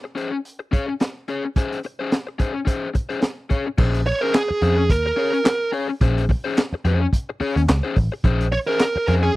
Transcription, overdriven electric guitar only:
0.04 muted overdriven electric guitar stroke
0.15 C#4 G#4 C5
0.32 muted overdriven electric guitar stroke
0.59 muted overdriven electric guitar stroke
0.71 C#4 G#4 C#5
0.88 muted overdriven electric guitar stroke
1.01 muted overdriven electric guitar stroke
1.28 C#4 G#4 C#5
1.44 muted overdriven electric guitar stroke
1.57 C#4 G#4 C5
1.85 muted overdriven electric guitar stroke
1.99 C#4 G#4 C5
2.27 muted overdriven electric guitar stroke
2.39 C#4 G#4 C5
2.54 muted overdriven electric guitar stroke
2.65 C#4 G#4 C5
2.94 muted overdriven electric guitar stroke
3.09 C#4 G#4 C5
3.21 muted overdriven electric guitar stroke
3.50 C#4 G#4 C#5
3.66 muted overdriven electric guitar stroke
3.78 C#4 G#4 C5
4.06 muted overdriven electric guitar stroke
4.21 C#4 G#4 C5
4.48 muted overdriven electric guitar stroke
4.62 C#4 G#4 C5
4.77 muted overdriven electric guitar stroke
5.06 muted overdriven electric guitar stroke
5.16 C#4 G#4 C#5
5.33 muted overdriven electric guitar stroke
5.44 muted overdriven electric guitar stroke
5.72 C#4 G#4 C#5
5.89 muted overdriven electric guitar stroke
6.01 C#4 G#4 C5
6.30 muted overdriven electric guitar stroke
6.44 C#4 G#4 C5
6.74 muted overdriven electric guitar stroke
6.85 C#4 G#4 C5
7.01 muted overdriven electric guitar stroke
7.29 muted overdriven electric guitar stroke
7.40 C#4 G#4 C#5
7.57 muted overdriven electric guitar stroke
7.69 muted overdriven electric guitar stroke
7.83 C#4 G#4 C5
7.97 muted overdriven electric guitar stroke
8.12 muted overdriven electric guitar stroke
8.24 C#4 G#4 C5
8.52 muted overdriven electric guitar stroke
8.68 C#4 G#4 C5
8.97 muted overdriven electric guitar stroke
9.08 C#4 G#4 C5
9.24 muted overdriven electric guitar stroke

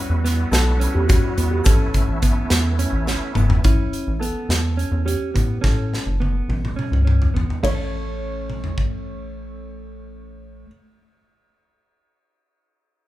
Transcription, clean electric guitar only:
Already playing: C#4
0.24 B3
0.80 C#4
1.09 C#4
1.38 B3
1.66 C#4
2.22 B3
2.79 C#4
3.08 C#4
3.36 B3
3.65 C#4
4.21 B3
4.77 C#4
5.06 C#4
5.34 B3
5.61 C#4
6.20 B3
6.76 C#4
7.05 C#4
7.34 B3
7.63 A3 C#4
7.71 E4 A4

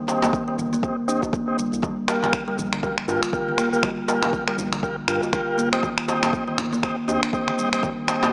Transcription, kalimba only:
0.23 A#3
0.48 D#3
0.73 A#3
1.08 D4
1.33 A#3
1.58 G3
1.83 G3
2.23 D3
2.48 G3
2.73 D3
3.08 F4
3.33 D3
3.58 A#3
3.83 G3
4.23 D3
4.48 G3
4.73 D3
5.08 F4
5.33 D3
5.58 A#3
5.83 D#3
6.23 A#3
6.48 D#3
6.73 A#3
7.08 D4
7.33 A#3
7.58 G3
7.83 D#3
8.23 A#3

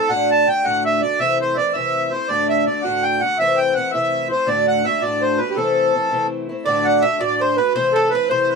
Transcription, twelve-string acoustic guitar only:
Already playing: C4
0.09 D2 A2 D3 A3 D4 F#4
0.47 D3 A3 D4 F#4
0.64 D2 A2 D3 A3 D4 F#4
1.02 D3 A3 D4 F#4
1.19 C3 E3 A3 C4 E4
1.57 E3 A3 C4 E4
1.75 C3 E3 A3 C4 E4
2.12 A3 C4 E4
2.29 D2 A2 D3 A3 D4 F#4
2.67 D3 A3 D4 F#4
2.84 D2 A2 D3 A3 D4 F#4
3.22 D3 A3 D4 F#4
3.39 C3 E3 A3 C4 E4
3.76 E3 A3 C4 E4
3.93 C3 E3 A3 C4 E4
4.30 A3 C4 E4
4.46 D2 A2 D3 A3 D4 F#4
4.84 D3 A3 D4 F#4
5.02 D2 A2 D3 A3 D4 F#4
5.40 D3 A3 D4 F#4
5.56 C3 E3 A3 C4 E4
5.94 E3 A3 C4 E4
6.11 C3 E3 A3 C4 E4
6.49 A3 C4 E4
6.66 D2 A2 D3 A3 D4 F#4
7.04 D3 A3 D4 F#4
7.20 D2 A2 D3 A3 D4 F#4
7.58 D3 A3 D4 F#4
7.75 C3 E3 A3 C4 E4
8.12 E3 A3 C4 E4
8.30 C3 E3 A3 C4 E4

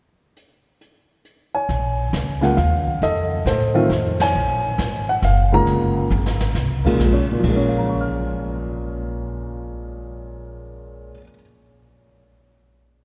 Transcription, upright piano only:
1.55 C#5 G#5
2.41 C#3 G#3 A#3 F4 F#5
2.57 F5
3.03 A4 D#5
3.47 A4 C5
3.74 D#3 A3 C4 F4
4.22 C#5 G#5
5.09 F#5
5.25 F5
5.52 C#3 G#3 A#3 F4 A#5
6.85 A#2 C#3 G#3 A#3 F4
6.96 F3
7.04 G#3
7.13 C#4
7.32 A#2
7.40 F3
7.44 F4
7.48 G#3 A#4
7.56 C#4 C#5
7.69 F5
7.78 A#5
7.89 C#6
8.01 F6

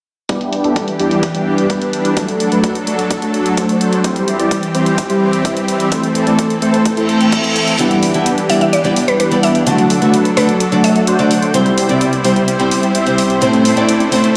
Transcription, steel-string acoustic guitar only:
7.79 E3 B3 E4 G4 D5
8.14 E3 B3 E4 G4 E5
8.49 E3 B3 E4 G4 D5
8.84 E3 B3 E4 G4 D5
9.31 E3 B3 E4 G4 D5
9.66 D3 A3 D4 F#4 D5
10.02 D3 A3 D4 F#4 E5
10.37 D3 A3 D4 F#4 D5
10.72 D3 A3 D4 F#4 D5
11.19 D3 A3 D4 F#4 D5
11.54 C3 G3 C4 E4 C5
11.89 C3 G3 C4 E4 D5
12.24 C3 G3 C4 E4 C5
12.59 C3 G3 C4 E4 C5
13.06 C3 G3 C4 E4 C5
13.41 A2 A3 C4 E4 C5
13.76 A2 A3 C4 E4 D5
14.11 A2 A3 C4 E4 C5

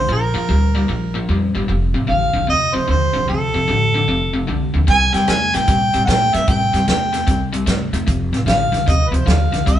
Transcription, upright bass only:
0.09 A#1
0.35 F2
0.49 D2
0.89 A#1
1.29 F2
1.55 G1
1.69 F1
1.94 A1
2.09 A1
2.35 C2
2.49 D#2
2.75 D2
2.89 D#2
3.16 C2
3.29 D2
3.55 C2
3.69 A1
4.07 F1
4.49 C2
4.75 D#2
4.88 C2
5.14 E2
5.28 E2
5.55 G2
5.68 A#2
5.94 A2
6.08 A#2
6.34 G2
6.48 A2
6.74 G2
6.87 E2
7.28 C2
7.67 G2
7.92 E2
8.07 F1
8.32 A1
8.46 A1
8.72 C2
8.87 D#2
9.11 D2
9.27 D#2
9.52 C2
9.67 C2

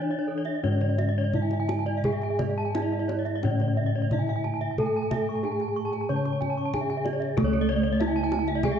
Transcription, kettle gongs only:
Already playing: E4
0.64 G#2
1.35 D4
2.05 G#4
2.75 D4
3.44 A2
4.12 D4
4.78 A4
5.44 D4
6.10 C#3
6.74 D4
7.37 A4
7.42 C#2
8.01 D4

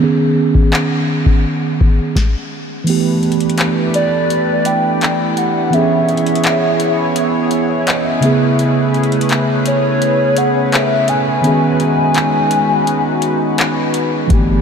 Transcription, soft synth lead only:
3.95 D5
4.66 G5
5.38 F#5
5.74 E5
9.67 C#5
10.38 F#5
10.74 E5
11.09 G#5

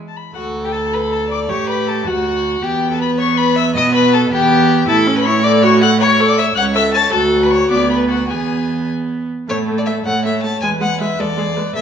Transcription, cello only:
Already playing: E2
0.35 D2
1.49 A2
2.06 D2
2.63 E2
3.76 B2
4.32 E2
4.88 A2
6.56 C#2
7.13 D2
7.72 D2
8.30 E2
9.49 A2
10.06 A2
10.62 E2
11.19 E2
11.75 A2

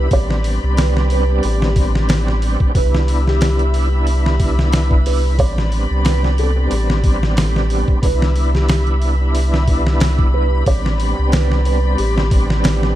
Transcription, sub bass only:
0.12 A1
0.63 C2
1.44 A1
2.75 C2
5.39 A1
5.90 C2
6.71 A1
8.03 C2
10.67 A1
11.19 C2
11.99 A1

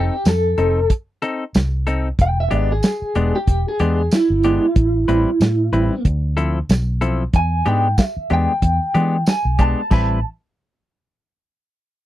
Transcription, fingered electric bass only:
0.26 F2
0.58 F1
1.55 C2
2.19 E1
2.52 G#1
3.02 muted fingered electric bass stroke
3.16 E1
3.48 E1
3.80 E2
4.30 G1
4.76 A1
5.09 A1
5.40 A2
5.72 A1
6.05 D2
6.69 B1
7.34 E2
7.66 G#2
8.17 muted fingered electric bass stroke
8.31 E2
8.62 E2
8.95 E3
9.45 B1
9.91 A1

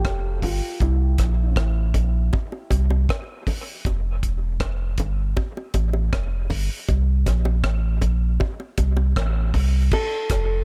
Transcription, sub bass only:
0.05 F1
0.43 G1
0.81 C2
1.19 A#1
1.56 A1
1.95 A#1
2.71 C2
3.85 F1
4.23 E1
4.60 F1
4.98 G1
5.74 A1
6.13 F1
6.51 G1
6.89 C2
7.27 A#1
7.64 A1
8.02 A#1
8.78 C2
9.17 A1
9.54 C2
10.30 F1

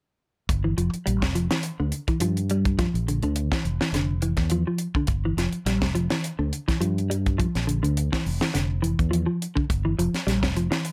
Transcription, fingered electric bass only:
0.49 G1
0.78 F1
0.94 muted fingered electric bass stroke
1.07 A#1
1.22 F1
1.80 D2
2.08 muted fingered electric bass stroke
2.20 G2
2.94 A#1
3.23 D2
3.65 F1
3.93 F1
4.37 E2
4.95 muted fingered electric bass stroke
5.08 G1
5.37 F1
5.52 muted fingered electric bass stroke
5.66 A#1
5.82 F1
6.39 D2
6.69 muted fingered electric bass stroke
6.81 G2
7.56 A#1
7.83 D2
8.26 F1
8.55 F1
8.99 E2
9.57 muted fingered electric bass stroke
9.70 G1
9.98 F1
10.27 A#1
10.43 F1

